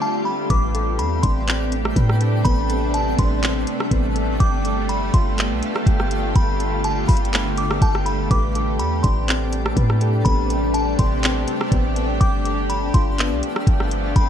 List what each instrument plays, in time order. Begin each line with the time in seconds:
Already playing: ambient pad D3 G3 A3 F4 G4, synth texture C4 A4 F5
0.02 synth bell A5
0.25 synth bell B5
0.50 808-style bass A1, ambient pad C3 G3 A3 D4 G4, synth texture B3 C4 D5 G5, synth keys B4, synth bell D6, kick, closed hi-hat
0.75 synth keys A4, closed hi-hat
0.99 808-style bass E2, synth bell B5, closed hi-hat
1.23 808-style bass A1, synth keys D4, synth bell C6, kick, closed hi-hat
1.48 synth keys C4, clap, closed hi-hat
1.72 closed hi-hat
1.85 cross-stick
1.96 808-style bass A2, synth keys B4, kick, closed hi-hat
2.09 cross-stick
2.21 synth keys A4, closed hi-hat
2.45 808-style bass A1, synth keys B3, ambient pad A4, synth bell B5, kick, closed hi-hat
2.70 synth keys A4, closed hi-hat
2.94 synth bell A5, closed hi-hat
3.18 808-style bass A1, synth keys D4, synth bell C6, kick, closed hi-hat
3.43 synth keys C4, clap, closed hi-hat
3.67 closed hi-hat
3.80 cross-stick
3.91 808-style bass A1, synth keys B3, kick, closed hi-hat
4.16 synth keys A4, closed hi-hat
4.40 808-style bass G1, ambient pad D3 F4 G4, synth texture B3 A4 F5, synth keys G5, synth bell D6, kick, closed hi-hat
4.65 synth keys A4, closed hi-hat
4.89 synth bell B5, closed hi-hat
5.13 808-style bass G1, synth keys F4, synth bell C6, kick, closed hi-hat
5.38 synth keys B3, clap, closed hi-hat
5.50 808-style bass B1
5.63 closed hi-hat
5.76 cross-stick
5.87 808-style bass G1, synth keys G5, kick, closed hi-hat
6.00 cross-stick
6.11 synth keys A4, closed hi-hat
6.35 808-style bass G1, synth keys G5, synth bell B5, kick, closed hi-hat
6.59 synth keys A4, closed hi-hat
6.84 synth bell A5, closed hi-hat
7.08 808-style bass G1, synth keys F4, synth bell B5, kick, closed hi-hat, open hi-hat
7.17 closed hi-hat
7.25 closed hi-hat
7.33 synth keys B3, clap, closed hi-hat
7.57 synth bell D6, closed hi-hat
7.71 cross-stick
7.82 808-style bass G1, synth keys G5, synth bell A5, kick, closed hi-hat
7.95 cross-stick
8.06 synth keys A4, synth bell B5, closed hi-hat
8.31 808-style bass A1, ambient pad C3 G3 D4, synth texture B3 C4 D5 G5, synth keys B4, synth bell D6, kick, closed hi-hat
8.55 synth keys A4, closed hi-hat
8.79 808-style bass E2, synth bell B5, closed hi-hat
9.03 808-style bass A1, synth keys D4, synth bell C6, kick, closed hi-hat
9.28 synth keys C4, clap, closed hi-hat
9.53 closed hi-hat
9.66 cross-stick
9.77 808-style bass A2, synth keys B4, kick, closed hi-hat
9.90 cross-stick
10.01 synth keys A4, closed hi-hat
10.25 808-style bass A1, synth keys B3, synth bell B5, kick, closed hi-hat
10.50 synth keys A4, closed hi-hat
10.74 synth bell A5, closed hi-hat
10.99 808-style bass A1, synth keys D4, synth bell C6, kick, closed hi-hat
11.23 synth keys C4, clap, closed hi-hat
11.48 closed hi-hat
11.61 cross-stick
11.72 808-style bass A1, synth keys B3, kick, closed hi-hat
11.96 synth keys A4, closed hi-hat
12.20 808-style bass G1, ambient pad F3 A3 B3, synth texture B3 A4 F5, synth keys G5, synth bell D6, kick, closed hi-hat
12.45 synth keys A4, closed hi-hat
12.70 synth bell B5, closed hi-hat
12.93 808-style bass G1, synth keys F4, synth bell C6, kick, closed hi-hat
13.18 synth keys B3, clap, closed hi-hat
13.31 808-style bass B1
13.43 closed hi-hat
13.56 cross-stick
13.67 808-style bass G1, synth keys G5, kick, closed hi-hat
13.80 cross-stick
13.91 synth keys A4, closed hi-hat
14.16 808-style bass G1, synth keys G5, synth bell B5, kick, closed hi-hat